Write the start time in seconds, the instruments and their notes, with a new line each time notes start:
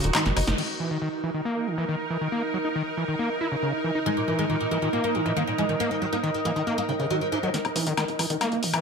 Already playing: ambient pad D#4 F#4
0.04 analog synth bass D#1, oud A#2, acid bass D#3, closed hi-hat
0.15 acid bass D#3, oud D#4, snare, clap, closed hi-hat, high woodblock
0.26 analog synth bass F#1, oud A#2, acid bass D#3, snare, closed hi-hat
0.37 analog synth bass F#1, acid bass D#3, oud D#4, open hi-hat, high woodblock
0.47 analog synth bass F#1, oud A#2, acid bass D#4, snare, closed hi-hat
0.58 acid bass D#3, ambient pad D#4 A#4, crash
0.76 acid bass E3, ambient pad A#4
0.91 acid bass D#3
0.99 acid bass D#3, ambient pad D#5
1.24 acid bass E3
1.34 acid bass D#3
1.45 acid bass A#3
1.67 acid bass D#3
1.78 acid bass E3
1.83 ambient pad D#6
1.89 acid bass D#3
2.10 acid bass E3
2.21 acid bass D#3
2.32 acid bass A#3
2.54 acid bass F#3
2.65 acid bass D#4
2.76 acid bass D#3
2.97 acid bass E3
3.08 acid bass D#3
3.19 acid bass A#3
3.41 acid bass E4
3.52 acid bass C#3
3.63 acid bass C#3
3.84 acid bass E3
3.95 acid bass D#4
4.06 acid bass D#3, oud G#3
4.17 oud A#2
4.28 oud A#2, acid bass E3
4.39 acid bass D#3, oud G#3
4.50 oud A#2, acid bass D#3
4.61 oud A#2
4.71 acid bass E3, oud A#3
4.82 oud A#2, acid bass D#3
4.93 oud A#2, acid bass A#3
5.04 oud A#3
5.15 oud A#2, acid bass D#3
5.26 oud A#2, acid bass E3
5.37 acid bass D#3, oud A#3
5.47 oud A#2
5.58 acid bass E3, oud G#3
5.69 oud A#2, acid bass D#3
5.80 oud A#3, acid bass A#3
5.91 oud D#3
6.02 oud D#3, acid bass F#3
6.13 oud A#3, acid bass D#4
6.24 acid bass D#3, oud D#3
6.34 oud D#3
6.45 acid bass E3, oud A#3
6.56 acid bass D#3, oud D#3
6.67 oud D#3, acid bass A#3
6.78 oud A#3
6.89 acid bass C#3, oud D#3
7.00 acid bass C#3, oud D#3
7.10 acid bass D#3, oud F#3
7.21 oud D#3
7.32 oud E3, acid bass D#4
7.43 oud D#3, acid bass F#3
7.54 acid bass D#3, ambient pad D#4 A#4, snare, closed hi-hat
7.65 analog synth bass D#1, closed hi-hat, high woodblock
7.76 analog synth bass D#1, acid bass E3, open hi-hat
7.87 analog synth bass D#1, acid bass D#3, closed hi-hat
7.97 acid bass D#3, snare, closed hi-hat, high woodblock
8.08 analog synth bass D#1, closed hi-hat
8.19 analog synth bass D#1, acid bass E3, open hi-hat, high woodblock
8.30 analog synth bass D#1, acid bass D#3, closed hi-hat
8.41 acid bass A#3, snare, closed hi-hat, high woodblock
8.52 analog synth bass D#1, closed hi-hat
8.63 analog synth bass D#1, acid bass D#3, open hi-hat
8.74 analog synth bass D#1, acid bass E3, closed hi-hat, high woodblock